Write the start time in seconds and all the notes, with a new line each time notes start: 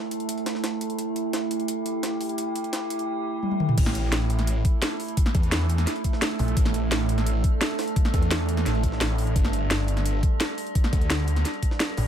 Already playing: A3 E4 A4
0.11 closed hi-hat
0.20 closed hi-hat
0.29 closed hi-hat
0.38 closed hi-hat
0.46 snare, closed hi-hat
0.55 snare
0.64 snare, closed hi-hat
0.81 closed hi-hat
0.90 closed hi-hat
0.98 G4, closed hi-hat
1.16 closed hi-hat
1.33 snare, closed hi-hat
1.51 closed hi-hat
1.60 closed hi-hat
1.68 closed hi-hat
1.86 closed hi-hat
2.03 snare, closed hi-hat
2.21 closed hi-hat, open hi-hat
2.29 closed hi-hat
2.38 closed hi-hat
2.55 closed hi-hat
2.64 closed hi-hat
2.73 snare, closed hi-hat
2.90 closed hi-hat
2.99 closed hi-hat
3.43 high tom
3.51 high tom
3.60 mid tom
3.69 mid tom
3.78 A1 A3 E4 A4, kick, closed hi-hat, crash
3.86 snare
3.95 closed hi-hat
4.12 snare, closed hi-hat
4.30 closed hi-hat
4.39 snare, closed hi-hat
4.47 closed hi-hat
4.65 kick, closed hi-hat
4.82 snare, closed hi-hat
5.00 closed hi-hat, open hi-hat
5.08 closed hi-hat
5.17 kick, closed hi-hat
5.26 snare
5.35 E2, kick, closed hi-hat
5.43 closed hi-hat
5.52 snare, closed hi-hat
5.70 closed hi-hat
5.78 snare, closed hi-hat
5.87 snare, closed hi-hat
5.96 closed hi-hat
6.04 kick, closed hi-hat
6.13 snare
6.22 snare, closed hi-hat
6.39 A#1, closed hi-hat, open hi-hat
6.48 closed hi-hat
6.57 A1 D4, kick, closed hi-hat
6.65 snare
6.74 closed hi-hat
6.92 snare, closed hi-hat
7.09 closed hi-hat
7.18 snare, closed hi-hat
7.26 closed hi-hat
7.44 kick, closed hi-hat
7.61 snare, closed hi-hat
7.79 snare, closed hi-hat, open hi-hat
7.88 closed hi-hat
7.96 kick, closed hi-hat
8.05 snare
8.14 E2, kick, closed hi-hat
8.22 closed hi-hat
8.31 snare, closed hi-hat
8.49 closed hi-hat
8.57 snare, closed hi-hat
8.66 A1, snare, closed hi-hat
8.75 closed hi-hat
8.83 kick, closed hi-hat
8.92 snare
9.01 snare, closed hi-hat
9.18 closed hi-hat, open hi-hat
9.27 closed hi-hat
9.36 G1 G3, kick, closed hi-hat
9.45 snare
9.53 closed hi-hat
9.71 snare, closed hi-hat
9.88 closed hi-hat
9.97 snare, closed hi-hat
10.05 closed hi-hat
10.23 kick, closed hi-hat
10.40 snare, closed hi-hat
10.58 closed hi-hat, open hi-hat
10.67 closed hi-hat
10.75 kick, closed hi-hat
10.84 snare
10.93 D2, kick, closed hi-hat
11.02 closed hi-hat
11.10 snare, closed hi-hat
11.28 closed hi-hat
11.36 snare, closed hi-hat
11.45 snare, closed hi-hat
11.54 closed hi-hat
11.63 kick, closed hi-hat
11.71 snare
11.80 snare, closed hi-hat
11.97 A1, closed hi-hat, open hi-hat